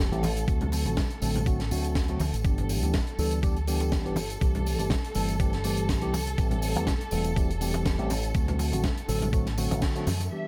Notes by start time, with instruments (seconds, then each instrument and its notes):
Already playing: fingered electric bass E1, string section A4
0.11 fingered electric bass A1, tine electric piano E3 G3 A3 C4 G4, closed hi-hat
0.23 open hi-hat, tambourine, muted conga, high conga
0.37 closed hi-hat, tambourine
0.47 fingered electric bass D2, tine electric piano D3 F#3 A3 C4 F#4, kick, closed hi-hat, tambourine
0.61 closed hi-hat, low conga
0.72 open hi-hat, tambourine, muted conga
0.85 fingered electric bass A1, tine electric piano D3 F#3 A3 C4 F#4, closed hi-hat, tambourine, high conga
0.97 kick, snare, closed hi-hat, tambourine, low conga
1.10 closed hi-hat
1.21 fingered electric bass A1, tine electric piano D3 F#3 A3 C4 A4, open hi-hat, tambourine
1.35 closed hi-hat, tambourine, low conga
1.46 tine electric piano D3 F#3 A3 C4 F#4, kick, closed hi-hat, tambourine
1.60 snare, closed hi-hat, muted conga
1.71 fingered electric bass D2, tine electric piano D3 F#3 A3 C4 F#4, open hi-hat, tambourine
1.84 closed hi-hat, tambourine
1.95 kick, snare, closed hi-hat, tambourine
2.08 tine electric piano D3 F#3 A3 C4 F#4, closed hi-hat
2.19 fingered electric bass D2, open hi-hat, tambourine, high conga
2.33 fingered electric bass A1, closed hi-hat, tambourine, muted conga
2.44 fingered electric bass G1, tine electric piano E3 G3 B3 D4 G4, string section A4, kick, closed hi-hat, tambourine
2.58 closed hi-hat, low conga
2.69 open hi-hat, tambourine
2.82 fingered electric bass D2, tine electric piano E3 G3 B3 D4 G4, closed hi-hat, tambourine, high conga
2.93 kick, snare, closed hi-hat, tambourine, low conga
3.07 closed hi-hat
3.18 fingered electric bass D2, tine electric piano E3 G3 B3 D4 A4, open hi-hat, tambourine
3.31 closed hi-hat, tambourine
3.43 tine electric piano E3 G3 B3 D4 G4, kick, closed hi-hat, tambourine
3.56 closed hi-hat
3.67 tine electric piano E3 G3 B3 D4 G4, open hi-hat, tambourine
3.80 closed hi-hat, tambourine, muted conga
3.92 kick, snare, closed hi-hat, tambourine
4.05 fingered electric bass G1, tine electric piano E3 G3 B3 D4 G4, closed hi-hat
4.16 open hi-hat, tambourine, muted conga, high conga
4.30 closed hi-hat, tambourine
4.41 fingered electric bass C2, tine electric piano E3 G3 A3 C4 G4, kick, closed hi-hat, tambourine
4.55 closed hi-hat, low conga
4.66 open hi-hat, tambourine
4.79 fingered electric bass G1, tine electric piano E3 G3 A3 C4 G4, closed hi-hat, tambourine, high conga
4.90 kick, snare, closed hi-hat, tambourine, low conga
5.04 closed hi-hat
5.15 fingered electric bass G1, tine electric piano E3 G3 A3 C4 A4, open hi-hat, tambourine
5.28 closed hi-hat, tambourine
5.39 tine electric piano E3 G3 A3 C4 G4, kick, closed hi-hat, tambourine
5.53 snare, closed hi-hat
5.64 tine electric piano E3 G3 A3 C4 G4, open hi-hat, tambourine
5.77 closed hi-hat, tambourine
5.89 kick, snare, closed hi-hat, tambourine
6.01 fingered electric bass C2, tine electric piano E3 G3 A3 C4 G4, closed hi-hat
6.14 open hi-hat, tambourine, high conga
6.27 closed hi-hat, tambourine, muted conga
6.38 fingered electric bass A1, tine electric piano E3 G3 A3 C4 G4, kick, closed hi-hat, tambourine
6.51 closed hi-hat, low conga
6.62 open hi-hat, tambourine
6.75 fingered electric bass E2, tine electric piano E3 G3 A3 C4 G4, closed hi-hat, tambourine, high conga
6.87 kick, snare, closed hi-hat, tambourine, low conga
7.01 closed hi-hat
7.11 fingered electric bass E1, tine electric piano E3 G3 A3 C4 A4, open hi-hat, tambourine
7.24 closed hi-hat, tambourine
7.36 tine electric piano E3 G3 A3 C4 G4, kick, closed hi-hat, tambourine
7.50 closed hi-hat
7.61 tine electric piano E3 G3 A3 C4 G4, open hi-hat, tambourine
7.74 closed hi-hat, tambourine, muted conga
7.85 kick, snare, closed hi-hat, tambourine
7.98 fingered electric bass A1, tine electric piano E3 G3 A3 C4 G4, closed hi-hat
8.10 open hi-hat, tambourine, muted conga, high conga
8.23 closed hi-hat, tambourine
8.34 fingered electric bass D2, tine electric piano D3 F#3 A3 C4 F#4, kick, closed hi-hat, tambourine
8.48 closed hi-hat, low conga
8.59 open hi-hat, tambourine, muted conga
8.72 fingered electric bass A1, tine electric piano D3 F#3 A3 C4 F#4, closed hi-hat, tambourine, high conga
8.83 kick, snare, closed hi-hat, tambourine, low conga
8.97 closed hi-hat
9.08 fingered electric bass A1, tine electric piano D3 F#3 A3 C4 A4, open hi-hat, tambourine
9.22 closed hi-hat, tambourine, low conga
9.33 tine electric piano D3 F#3 A3 C4 F#4, kick, closed hi-hat, tambourine
9.46 snare, closed hi-hat, muted conga
9.57 tine electric piano D3 F#3 A3 C4 F#4, open hi-hat, tambourine, muted conga
9.71 fingered electric bass A1, closed hi-hat, tambourine, high conga
9.82 kick, snare, closed hi-hat, tambourine
9.95 tine electric piano D3 F#3 A3 C4 F#4, closed hi-hat
10.07 fingered electric bass F#2, open hi-hat, tambourine, high conga
10.20 closed hi-hat, tambourine, muted conga
10.30 tine electric piano E3 G3 B3 D4 G4, string section E5, shaker